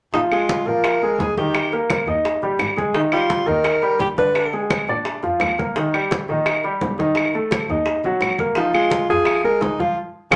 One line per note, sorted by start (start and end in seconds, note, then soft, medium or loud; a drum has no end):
0.13 0.21 A#1 medium
0.13 0.29 F3 medium
0.13 0.22 D#4 medium
0.13 0.29 F4 medium
0.13 high bongo medium
0.13 high conga soft
0.32 0.61 G#3 medium
0.32 0.69 F4 medium
0.32 0.61 G#4 medium
0.32 high bongo soft
0.32 high conga soft
0.32 claves medium
0.49 high bongo medium
0.49 high conga medium
0.66 0.74 A#2 medium
0.66 0.96 F3 medium
0.66 0.97 F4 medium
0.66 1.21 A#4 loud
0.84 high bongo medium
0.84 high conga soft
0.84 claves medium
1.02 1.31 G#3 medium
1.02 1.32 G#4 medium
1.02 high bongo soft
1.02 high conga soft
1.18 1.26 D#2 medium
1.18 1.37 G#4 medium
1.18 high bongo soft
1.18 low bongo medium
1.18 high conga medium
1.37 1.66 D#3 medium
1.37 1.66 D#4 medium
1.37 1.86 G4 medium
1.37 high bongo soft
1.37 high conga medium
1.54 high bongo medium
1.54 high conga soft
1.54 claves medium
1.72 2.01 A#3 medium
1.72 2.01 A#4 medium
1.72 high bongo soft
1.72 high conga soft
1.90 high bongo medium
1.90 high conga medium
1.90 claves medium
2.06 2.14 D#2 medium
2.06 2.36 D#4 medium
2.06 2.37 D#5 medium
2.06 high conga soft
2.25 high bongo medium
2.25 high conga soft
2.42 2.49 A#1 medium
2.42 2.72 G3 medium
2.42 2.72 G4 medium
2.42 high bongo soft
2.42 high conga soft
2.59 2.67 G#1 medium
2.59 high bongo soft
2.59 low bongo medium
2.59 high conga soft
2.59 claves medium
2.76 2.92 G#3 medium
2.76 2.92 G#4 medium
2.76 high bongo soft
2.76 high conga medium
2.94 3.09 D#3 medium
2.94 3.02 D#4 medium
2.94 3.09 D#4 medium
2.94 high bongo medium
2.94 high conga soft
3.12 3.42 G3 medium
3.12 3.49 F4 medium
3.12 3.42 G4 medium
3.12 high bongo soft
3.12 high conga soft
3.12 claves medium
3.30 high bongo medium
3.30 high conga medium
3.47 3.55 D#2 medium
3.47 3.76 D#3 medium
3.47 3.76 D#4 medium
3.47 4.00 A#4 loud
3.64 high bongo medium
3.64 high conga soft
3.64 claves medium
3.82 4.12 G3 medium
3.82 4.12 G4 medium
3.82 high bongo soft
3.82 high conga soft
3.99 4.08 A#1 medium
3.99 4.09 G4 medium
3.99 high bongo soft
3.99 low bongo medium
3.99 high conga medium
4.17 4.47 D3 medium
4.17 4.47 D4 medium
4.17 4.68 B4 medium
4.17 high bongo soft
4.17 high conga medium
4.35 high bongo medium
4.35 high conga soft
4.35 claves medium
4.53 4.82 G#3 medium
4.53 4.82 G#4 medium
4.53 high bongo soft
4.53 high conga soft
4.70 high bongo medium
4.70 high conga medium
4.70 claves medium
4.88 4.96 A#2 medium
4.88 5.17 D4 medium
4.88 5.18 D5 medium
4.88 high conga soft
5.05 high bongo medium
5.05 high conga soft
5.23 5.30 F2 medium
5.23 5.52 F3 medium
5.23 5.52 F4 medium
5.23 high bongo soft
5.23 high conga soft
5.40 5.48 D#2 medium
5.40 high bongo soft
5.40 low bongo medium
5.40 high conga soft
5.40 claves medium
5.58 5.73 A#3 medium
5.58 5.73 A#4 medium
5.58 high bongo soft
5.58 high conga medium
5.76 5.91 D#3 medium
5.76 5.91 D#4 medium
5.76 high bongo medium
5.76 high conga soft
5.94 6.23 G3 medium
5.94 6.23 G4 medium
5.94 high bongo soft
5.94 high conga soft
5.94 claves medium
6.11 high bongo medium
6.11 high conga medium
6.29 6.37 A#1 medium
6.29 6.58 D#3 medium
6.29 6.58 D#4 medium
6.46 high bongo medium
6.46 high conga soft
6.46 claves medium
6.64 6.93 G3 medium
6.64 6.93 G4 medium
6.64 high bongo soft
6.64 high conga soft
6.81 6.90 B1 medium
6.81 high bongo soft
6.81 low bongo medium
6.81 high conga medium
6.98 7.28 D#3 medium
6.98 7.28 D#4 medium
6.98 high bongo soft
6.98 high conga medium
7.15 high bongo medium
7.15 high conga soft
7.15 claves medium
7.33 7.63 A3 medium
7.33 7.63 A4 medium
7.33 high bongo soft
7.33 high conga soft
7.51 high bongo medium
7.51 high conga medium
7.51 claves medium
7.69 7.77 D#2 medium
7.69 7.99 D#4 medium
7.69 7.99 D#5 medium
7.69 high conga soft
7.86 high bongo medium
7.86 high conga soft
8.04 8.11 B1 medium
8.04 8.34 F#3 medium
8.04 8.34 F#4 medium
8.04 high bongo soft
8.04 high conga soft
8.21 8.29 A#1 medium
8.21 high bongo soft
8.21 low bongo medium
8.21 high conga soft
8.21 claves medium
8.38 8.54 A#3 medium
8.38 8.54 A#4 medium
8.38 high bongo soft
8.38 high conga medium
8.55 8.72 F3 medium
8.55 8.74 D#4 medium
8.55 8.72 F4 medium
8.55 high bongo medium
8.55 high conga soft
8.73 9.03 G#3 medium
8.73 9.07 F4 medium
8.73 9.03 G#4 medium
8.73 high bongo soft
8.73 high conga soft
8.73 claves medium
8.90 high bongo medium
8.90 high conga medium
9.09 9.17 F2 medium
9.09 9.39 F3 medium
9.09 9.39 F4 medium
9.09 9.43 G#4 loud
9.25 high bongo medium
9.25 high conga soft
9.25 claves medium
9.43 9.73 G#3 medium
9.43 9.73 G#4 medium
9.43 9.63 A#4 loud
9.43 high bongo soft
9.43 high conga soft
9.61 9.69 C#2 medium
9.61 9.82 D#4 medium
9.61 high bongo soft
9.61 low bongo medium
9.61 high conga medium
9.79 9.94 F3 medium
9.79 9.94 F4 medium
9.79 9.98 F4 medium
9.79 high bongo soft
9.79 high conga medium
10.31 10.36 C#2 medium
10.31 10.36 C#4 medium
10.31 10.36 F4 medium
10.31 10.36 G#4 medium
10.31 low bongo medium
10.31 claves medium